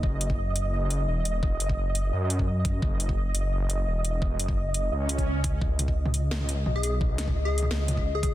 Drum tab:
HH |----x-------x-------x-------x---|----x-------x-------x-------x---|----x-------x-------x-------x---|----x-------x-------x-x-----x---|
SD |--------------------------------|--------------------------------|--------------------------------|--------------------------------|
T2 |--------------------------------|--------------------------------|--------------------------------|--------------------------------|
BD |o-----o-------------------------|o-----o---------------o-----o---|o-----o-------------------------|o-----o---------------o-----o---|

HH |----x-------x-------x-------x---|----x--------x------x-------x---|
SD |----------------o---------------|----o-----------o---------------|
T2 |----o-----o-------o-----o-------|o-----o-------o-----o-------o---|
BD |o-----o-------------------------|o-----o---------------o-----o---|